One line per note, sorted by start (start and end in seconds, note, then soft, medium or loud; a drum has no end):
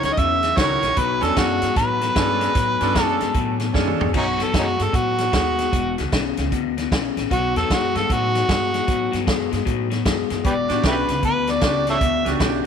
0.03 0.16 D2 medium
0.03 0.16 F#2 medium
0.03 0.17 D#3 medium
0.03 0.15 C#5 medium
0.03 snare soft
0.03 closed hi-hat medium
0.13 0.20 D#5 medium
0.17 0.51 E2 medium
0.17 0.40 F#2 medium
0.17 0.41 C#3 medium
0.17 0.59 E5 loud
0.17 kick medium
0.17 closed hi-hat medium
0.43 0.56 F#2 medium
0.43 0.56 C#3 medium
0.43 snare soft
0.43 closed hi-hat medium
0.56 0.79 C#2 medium
0.56 0.80 F#2 medium
0.56 0.80 D#3 medium
0.56 0.94 E4 medium
0.56 0.94 F#4 medium
0.56 0.95 A#4 medium
0.56 1.00 C#5 medium
0.56 kick medium
0.56 snare loud
0.56 closed hi-hat medium
0.82 0.95 A#1 medium
0.82 0.96 F#2 medium
0.82 0.96 D#3 medium
0.82 snare soft
0.82 closed hi-hat medium
0.97 1.18 B1 medium
0.97 1.20 B2 medium
0.97 1.20 F#3 medium
0.97 1.25 B4 medium
0.97 kick medium
0.97 closed hi-hat medium
1.21 1.34 E2 medium
1.21 1.35 B2 medium
1.21 1.36 F#3 medium
1.21 1.67 C#4 medium
1.21 1.67 D4 medium
1.21 1.68 A4 medium
1.21 1.39 A4 medium
1.21 snare soft
1.21 closed hi-hat medium
1.36 1.58 F#2 medium
1.36 1.60 B2 medium
1.36 1.60 G#3 medium
1.36 1.76 F#4 medium
1.36 kick medium
1.36 snare medium
1.36 closed hi-hat medium
1.62 1.74 G2 medium
1.62 1.75 B2 medium
1.62 1.76 G#3 medium
1.62 snare soft
1.62 closed hi-hat medium
1.76 2.10 A2 medium
1.76 1.99 B2 medium
1.76 1.99 F#3 medium
1.76 3.04 B4 medium
1.76 kick medium
1.76 snare soft
1.76 closed hi-hat medium
2.01 2.13 B2 medium
2.01 2.15 F#3 medium
2.01 snare soft
2.01 closed hi-hat medium
2.14 2.49 G2 medium
2.14 2.38 B2 medium
2.14 2.38 G#3 medium
2.14 2.53 C#4 medium
2.14 2.53 D4 medium
2.14 2.53 A4 medium
2.14 kick medium
2.14 snare loud
2.14 closed hi-hat medium
2.40 2.54 B2 medium
2.40 2.54 G#3 medium
2.40 snare soft
2.40 closed hi-hat medium
2.55 2.77 A2 medium
2.55 2.78 B2 medium
2.55 2.78 F#3 medium
2.55 kick medium
2.55 snare soft
2.55 closed hi-hat medium
2.80 2.93 G2 medium
2.80 2.93 B2 medium
2.80 2.94 F#3 medium
2.80 3.26 C#4 medium
2.80 3.26 D4 medium
2.80 3.27 A4 medium
2.80 snare soft
2.80 closed hi-hat medium
2.94 3.16 F#2 medium
2.94 3.18 B2 medium
2.94 3.18 G#3 medium
2.94 kick medium
2.94 snare loud
2.94 closed hi-hat medium
3.04 3.71 A4 medium
3.20 3.33 G2 medium
3.20 3.33 B2 medium
3.20 3.34 G#3 medium
3.20 snare soft
3.20 closed hi-hat medium
3.34 3.68 A2 medium
3.34 3.57 B2 medium
3.34 3.58 F#3 medium
3.34 kick medium
3.34 closed hi-hat medium
3.60 3.73 B2 medium
3.60 3.73 F#3 medium
3.60 snare soft
3.60 closed hi-hat medium
3.73 3.96 F#2 medium
3.73 3.97 B2 medium
3.73 3.98 G#3 medium
3.73 4.11 C#4 medium
3.73 4.11 D4 medium
3.73 4.12 A4 medium
3.73 kick medium
3.73 snare medium
3.87 mid tom medium
4.00 4.12 E2 medium
4.00 4.12 B2 medium
4.00 4.13 G#3 medium
4.00 floor tom medium
4.13 4.35 B1 medium
4.13 4.37 B2 medium
4.13 4.37 F#3 medium
4.13 4.25 C#4 medium
4.13 4.25 D#4 medium
4.13 4.44 F#4 medium
4.13 kick medium
4.13 crash medium
4.38 4.52 E2 medium
4.38 4.51 B2 medium
4.38 4.52 F#3 medium
4.38 snare soft
4.38 closed hi-hat medium
4.43 4.55 A4 medium
4.53 4.75 F#2 medium
4.53 4.76 B2 medium
4.53 4.76 G#3 medium
4.53 kick medium
4.53 snare loud
4.53 closed hi-hat medium
4.58 4.64 C#4 medium
4.58 4.66 D#4 medium
4.58 4.84 F#4 medium
4.78 4.92 G2 medium
4.78 4.91 B2 medium
4.78 4.92 G#3 medium
4.78 snare soft
4.78 closed hi-hat medium
4.83 4.97 A4 medium
4.93 5.27 A2 medium
4.93 5.16 B2 medium
4.93 5.16 F#3 medium
4.93 6.10 F#4 loud
4.93 kick medium
4.93 closed hi-hat medium
5.18 5.31 B2 medium
5.18 5.32 F#3 medium
5.18 snare soft
5.18 closed hi-hat medium
5.32 5.67 D#2 medium
5.32 5.55 B2 medium
5.32 5.56 G#3 medium
5.32 kick medium
5.32 snare loud
5.32 closed hi-hat medium
5.58 5.71 B2 medium
5.58 5.71 G#3 medium
5.58 snare soft
5.58 closed hi-hat medium
5.72 5.94 E1 medium
5.72 5.95 E2 medium
5.72 5.95 B2 medium
5.72 kick medium
5.72 closed hi-hat medium
5.98 6.11 C#2 medium
5.98 6.11 E2 medium
5.98 6.11 B2 medium
5.98 snare soft
5.98 closed hi-hat medium
6.12 6.33 B1 medium
6.12 6.35 E2 medium
6.12 6.36 C#3 medium
6.12 kick medium
6.12 snare loud
6.12 closed hi-hat medium
6.37 6.50 C#2 medium
6.37 6.51 E2 medium
6.37 6.51 C#3 medium
6.37 snare soft
6.37 closed hi-hat medium
6.52 6.85 D2 medium
6.52 6.75 E2 medium
6.52 6.75 B2 medium
6.52 kick medium
6.52 closed hi-hat medium
6.77 6.90 E2 medium
6.77 6.90 B2 medium
6.77 snare soft
6.77 closed hi-hat medium
6.92 7.13 B1 medium
6.92 7.14 E2 medium
6.92 7.15 C#3 loud
6.92 kick medium
6.92 snare loud
6.92 closed hi-hat medium
7.16 7.29 A1 medium
7.16 7.30 E2 medium
7.16 7.30 C#3 medium
7.16 snare soft
7.16 closed hi-hat medium
7.31 7.52 B1 medium
7.31 7.54 B2 medium
7.31 7.54 F#3 medium
7.31 7.56 F#4 medium
7.31 kick medium
7.31 closed hi-hat medium
7.56 7.68 E2 medium
7.56 7.69 B2 medium
7.56 7.69 F#3 medium
7.56 7.75 A4 medium
7.56 snare soft
7.56 closed hi-hat medium
7.70 7.91 F#2 medium
7.70 7.93 B2 medium
7.70 7.93 G#3 medium
7.70 7.98 F#4 medium
7.70 kick medium
7.70 snare loud
7.70 closed hi-hat medium
7.95 8.07 G2 medium
7.95 8.08 B2 medium
7.95 8.08 G#3 medium
7.95 8.14 A4 medium
7.95 snare soft
7.95 closed hi-hat medium
8.10 8.43 A2 medium
8.10 8.32 B2 medium
8.10 8.33 F#3 medium
8.10 9.25 F#4 loud
8.10 kick medium
8.10 closed hi-hat medium
8.35 8.47 B2 medium
8.35 8.48 F#3 medium
8.35 snare soft
8.35 closed hi-hat medium
8.48 8.82 G2 medium
8.48 8.71 B2 medium
8.48 8.71 G#3 medium
8.48 kick medium
8.48 snare loud
8.48 closed hi-hat medium
8.73 8.86 B2 medium
8.73 8.87 G#3 medium
8.73 snare soft
8.73 closed hi-hat medium
8.87 9.09 A2 medium
8.87 9.10 B2 medium
8.87 9.11 F#3 medium
8.87 kick medium
8.87 closed hi-hat medium
9.12 9.25 G2 medium
9.12 9.25 B2 medium
9.12 9.26 F#3 medium
9.12 snare soft
9.12 closed hi-hat medium
9.26 9.48 F#2 medium
9.26 9.49 B2 medium
9.26 9.50 G#3 medium
9.26 kick medium
9.26 snare loud
9.26 closed hi-hat medium
9.51 9.65 G2 medium
9.51 9.64 B2 medium
9.51 9.65 G#3 medium
9.51 snare soft
9.51 closed hi-hat medium
9.66 10.00 A2 medium
9.66 9.89 B2 medium
9.66 9.89 F#3 medium
9.66 kick medium
9.66 closed hi-hat medium
9.90 10.04 B2 medium
9.90 10.04 F#3 medium
9.90 snare soft
9.90 closed hi-hat medium
10.05 10.27 F#2 medium
10.05 10.28 B2 medium
10.05 10.28 G#3 medium
10.05 kick medium
10.05 snare loud
10.05 closed hi-hat medium
10.30 10.43 F#2 medium
10.30 10.43 B2 medium
10.30 10.44 G#3 medium
10.30 snare soft
10.30 closed hi-hat medium
10.45 10.66 E1 medium
10.45 10.67 E2 medium
10.45 10.68 B2 medium
10.45 10.54 G4 medium
10.45 10.54 B4 medium
10.45 10.84 D5 medium
10.45 kick medium
10.45 closed hi-hat medium
10.69 10.82 A1 medium
10.69 10.82 E2 medium
10.69 10.83 B2 medium
10.69 11.14 D4 medium
10.69 11.15 F#4 medium
10.69 11.15 G4 medium
10.69 snare soft
10.69 closed hi-hat medium
10.83 11.05 B1 medium
10.83 11.06 E2 medium
10.83 11.06 C#3 medium
10.83 10.95 E4 medium
10.83 10.95 G4 medium
10.83 11.24 B4 medium
10.83 kick medium
10.83 snare loud
10.83 closed hi-hat medium
11.08 11.21 C#2 medium
11.08 11.21 E2 medium
11.08 11.21 C#3 medium
11.08 snare soft
11.08 closed hi-hat medium
11.23 11.56 D2 medium
11.23 11.45 E2 medium
11.23 11.46 B2 medium
11.23 11.53 B4 loud
11.23 kick medium
11.23 closed hi-hat medium
11.47 11.61 E2 medium
11.47 11.61 B2 medium
11.47 snare soft
11.47 closed hi-hat medium
11.51 11.88 D5 medium
11.60 11.95 C#2 medium
11.60 11.85 E2 medium
11.60 11.85 C#3 medium
11.60 11.98 D4 medium
11.60 11.98 F#4 medium
11.60 11.99 G4 medium
11.60 kick medium
11.60 snare loud
11.60 closed hi-hat medium
11.87 12.00 C#3 medium
11.87 11.97 A4 medium
11.87 11.97 C#5 medium
11.87 12.27 E5 loud
11.87 snare soft
11.87 closed hi-hat medium
12.01 12.22 D2 medium
12.01 12.24 E2 medium
12.01 12.24 B2 medium
12.01 kick medium
12.01 closed hi-hat medium
12.25 12.38 C#2 medium
12.25 12.38 E2 medium
12.25 12.39 B2 medium
12.25 12.66 D4 medium
12.25 12.66 F#4 medium
12.25 12.66 G4 medium
12.25 snare soft
12.25 closed hi-hat medium
12.39 12.61 B1 medium
12.39 12.62 E2 medium
12.39 12.62 C#3 medium
12.39 kick medium
12.39 snare loud
12.39 closed hi-hat medium